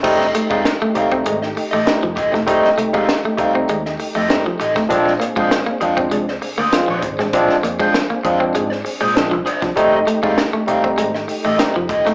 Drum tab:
CC |x---------------|----------------|----------------|----------------|
HH |--x-x-x-x-o-x-x-|x-x-x-x-x-o-x-x-|x-x-x-x-x-o-x-x-|x-x-x-x-x-o-x-x-|
SD |-o--o----o--o--o|-o--o----o--o--o|-o--o----o--o--o|-o--o----o--o--o|
BD |o--o---o------o-|o--o--o--------o|o--o---o------o-|o--o--o--------o|

CC |----------------|
HH |x-x-x-x-x-o-x-x-|
SD |----o----o--o--o|
BD |o--o---o------o-|